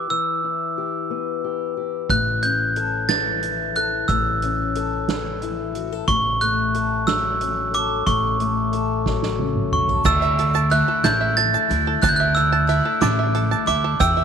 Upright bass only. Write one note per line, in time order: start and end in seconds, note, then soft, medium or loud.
2.10 4.05 A1 medium
4.09 6.04 A1 medium
6.08 8.03 A1 medium
8.07 10.01 A1 medium
10.05 10.80 D2 medium
11.04 11.54 A1 medium
11.70 11.95 D2 medium
12.03 12.78 D2 loud
13.02 13.52 A1 loud
13.68 13.93 D2 medium
14.00 14.24 E2 medium